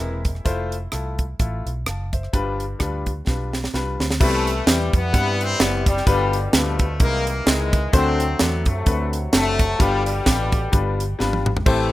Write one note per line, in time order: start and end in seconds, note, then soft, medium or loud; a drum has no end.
0.00 0.39 E1 medium
0.00 0.21 C3 medium
0.00 0.26 E3 medium
0.00 0.27 G#3 medium
0.00 0.42 G#3 medium
0.00 0.42 A#3 soft
0.00 0.27 C4 medium
0.00 0.25 E4 medium
0.00 0.27 E4 medium
0.00 0.28 A#4 medium
0.25 kick medium
0.25 cross-stick soft
0.25 closed hi-hat medium
0.35 cross-stick soft
0.45 0.86 F1 medium
0.45 0.74 A3 loud
0.45 0.74 E4 medium
0.45 0.74 F4 loud
0.45 0.74 C5 loud
0.45 kick medium
0.45 closed hi-hat medium
0.72 closed hi-hat medium
0.92 1.33 C2 medium
0.92 1.21 A3 medium
0.92 1.21 E4 medium
0.92 1.21 F4 medium
0.92 1.22 A4 medium
0.92 cross-stick medium
0.92 closed hi-hat medium
1.19 kick medium
1.19 closed hi-hat medium
1.39 1.62 A1 medium
1.39 1.68 A3 medium
1.39 1.68 E4 medium
1.39 1.68 F4 medium
1.39 1.69 A4 medium
1.39 kick medium
1.39 closed hi-hat medium
1.66 1.83 B1 medium
1.66 closed hi-hat medium
1.86 2.26 F#1 medium
1.86 2.12 F5 soft
1.86 2.12 A5 medium
1.86 cross-stick loud
1.86 closed hi-hat medium
2.13 2.58 C5 medium
2.13 2.57 E5 medium
2.13 kick medium
2.13 closed hi-hat medium
2.23 cross-stick soft
2.33 2.73 G1 medium
2.33 3.02 G2 medium
2.33 2.62 G3 medium
2.33 2.62 D4 medium
2.33 2.62 F4 medium
2.33 2.62 B4 loud
2.33 kick medium
2.33 closed hi-hat medium
2.60 closed hi-hat medium
2.79 3.20 D2 medium
2.79 3.08 G3 medium
2.79 3.08 D4 medium
2.79 3.09 F4 medium
2.79 3.09 B4 medium
2.79 kick medium
2.79 cross-stick medium
2.79 closed hi-hat medium
3.06 kick medium
3.06 closed hi-hat medium
3.27 3.67 B1 medium
3.27 3.55 G3 medium
3.27 3.56 D4 medium
3.27 3.56 F4 medium
3.27 3.56 B4 medium
3.27 kick medium
3.27 snare soft
3.53 snare medium
3.64 snare medium
3.74 3.96 C2 medium
3.74 4.02 G3 medium
3.74 4.02 D4 medium
3.74 4.03 F4 medium
3.74 4.03 B4 medium
3.74 snare medium
4.00 4.17 D2 medium
4.00 snare medium
4.11 snare medium
4.20 4.60 C2 loud
4.20 4.89 C3 medium
4.20 4.93 E3 medium
4.20 4.49 G3 loud
4.20 4.64 A3 loud
4.20 4.49 B3 medium
4.20 4.49 C4 medium
4.20 4.49 E4 loud
4.20 4.49 B4 loud
4.20 kick loud
4.20 crash loud
4.47 closed hi-hat medium
4.66 4.89 E2 medium
4.66 4.96 G3 medium
4.66 4.93 G3 medium
4.66 4.96 B3 medium
4.66 4.96 C4 medium
4.66 4.96 E4 medium
4.66 4.96 D5 medium
4.66 snare loud
4.66 closed hi-hat loud
4.93 5.11 F2 medium
4.93 5.83 E3 medium
4.93 5.83 G3 medium
4.93 5.40 B3 loud
4.93 kick medium
4.93 closed hi-hat medium
5.13 5.53 G2 loud
5.13 5.42 G3 medium
5.13 5.42 B3 medium
5.13 5.42 C4 medium
5.13 5.42 E4 medium
5.13 5.42 B4 medium
5.13 kick loud
5.13 closed hi-hat loud
5.41 5.61 C4 loud
5.41 closed hi-hat medium
5.60 6.00 F#1 medium
5.60 5.89 G3 medium
5.60 5.89 B3 medium
5.60 5.87 B3 loud
5.60 5.89 C4 medium
5.60 5.89 E4 medium
5.60 5.89 D5 medium
5.60 snare loud
5.60 closed hi-hat loud
5.86 6.06 G3 loud
5.86 kick loud
5.86 closed hi-hat medium
5.97 snare soft
6.06 6.46 G1 loud
6.06 6.76 G2 medium
6.06 6.96 B2 medium
6.06 6.53 D3 medium
6.06 6.35 G3 loud
6.06 6.50 G3 loud
6.06 6.35 B3 loud
6.06 6.35 D4 medium
6.06 6.36 F4 loud
6.06 6.36 B4 loud
6.06 kick loud
6.06 closed hi-hat loud
6.33 closed hi-hat medium
6.53 7.02 D2 medium
6.53 6.97 D3 medium
6.53 6.97 F3 medium
6.53 6.82 G3 medium
6.53 7.00 A3 medium
6.53 6.82 B3 medium
6.53 6.82 D4 medium
6.53 6.82 F4 medium
6.53 6.82 B4 medium
6.53 snare loud
6.53 closed hi-hat loud
6.79 kick loud
6.79 closed hi-hat medium
7.00 7.40 C2 loud
7.00 7.69 C3 medium
7.00 7.47 D#3 medium
7.00 7.47 E3 medium
7.00 7.29 G#3 medium
7.00 7.26 A#3 loud
7.00 7.29 C4 medium
7.00 7.29 D#4 medium
7.00 7.29 E4 medium
7.00 7.29 A#4 medium
7.00 kick loud
7.00 closed hi-hat loud
7.27 7.46 A#3 loud
7.27 closed hi-hat loud
7.46 7.86 C#2 loud
7.46 7.91 D#3 medium
7.46 7.91 E3 medium
7.46 7.75 G#3 medium
7.46 7.94 G#3 medium
7.46 7.75 C4 medium
7.46 7.75 D#4 medium
7.46 7.75 E4 medium
7.46 7.75 A#4 medium
7.46 snare loud
7.46 closed hi-hat loud
7.73 kick loud
7.73 closed hi-hat medium
7.93 8.33 D2 loud
7.93 8.62 D3 medium
7.93 8.66 F#3 medium
7.93 8.22 A3 loud
7.93 8.65 A3 medium
7.93 8.22 C4 loud
7.93 8.37 C4 loud
7.93 8.22 D4 medium
7.93 8.22 F#4 loud
7.93 8.22 C5 loud
7.93 kick loud
7.93 closed hi-hat loud
8.20 closed hi-hat medium
8.39 8.66 E2 medium
8.39 8.68 A3 medium
8.39 8.66 B3 loud
8.39 8.68 C4 medium
8.39 8.68 D4 medium
8.39 8.68 F#4 medium
8.39 8.69 D5 medium
8.39 snare loud
8.39 closed hi-hat loud
8.66 8.84 F#2 medium
8.66 9.33 C3 medium
8.66 9.33 F#3 medium
8.66 9.09 A3 medium
8.66 kick loud
8.66 closed hi-hat medium
8.86 9.26 D2 loud
8.86 9.15 A3 medium
8.86 9.15 C4 medium
8.86 9.15 D4 medium
8.86 9.15 F#4 medium
8.86 9.15 B4 medium
8.86 kick loud
8.86 closed hi-hat loud
9.13 closed hi-hat medium
9.32 9.73 F#1 medium
9.32 9.77 C3 medium
9.32 9.77 F#3 medium
9.32 9.61 A3 medium
9.32 9.77 A3 loud
9.32 9.62 C4 medium
9.32 9.62 D4 medium
9.32 9.62 F#4 medium
9.32 9.62 A4 medium
9.32 snare loud
9.32 closed hi-hat medium
9.59 kick loud
9.59 closed hi-hat medium
9.79 10.19 G1 loud
9.79 10.48 G2 medium
9.79 10.06 B2 medium
9.79 10.06 D3 medium
9.79 10.08 G3 loud
9.79 10.05 G3 loud
9.79 10.08 B3 medium
9.79 10.08 D4 medium
9.79 10.08 F4 loud
9.79 10.08 B4 loud
9.79 kick loud
9.79 closed hi-hat loud
10.06 10.96 B2 medium
10.06 10.96 D3 medium
10.06 10.95 G3 loud
10.06 closed hi-hat medium
10.25 10.66 A1 medium
10.25 10.54 G3 medium
10.25 10.55 B3 medium
10.25 10.55 D4 medium
10.25 10.55 F4 medium
10.25 10.55 B4 medium
10.25 kick medium
10.25 snare medium
10.25 closed hi-hat loud
10.52 kick medium
10.52 closed hi-hat medium
10.72 11.13 G1 loud
10.72 11.01 G3 loud
10.72 11.01 B3 medium
10.72 11.01 D4 medium
10.72 11.01 F4 medium
10.72 11.01 B4 medium
10.72 kick loud
10.72 closed hi-hat loud
11.00 closed hi-hat medium
11.19 11.59 G#1 loud
11.19 11.48 G3 loud
11.19 11.48 B3 medium
11.19 11.48 D4 medium
11.19 11.48 F4 medium
11.19 11.48 B4 loud
11.19 snare medium
11.33 high tom medium
11.46 mid tom loud
11.57 floor tom medium
11.66 11.92 A1 loud
11.66 11.92 A2 medium
11.66 11.92 C3 medium
11.66 11.92 E3 medium
11.66 11.92 A3 medium
11.66 11.92 A3 loud
11.66 11.92 C4 medium
11.66 11.92 E4 loud
11.66 11.92 G4 loud
11.66 11.92 C5 loud
11.66 kick loud
11.66 crash medium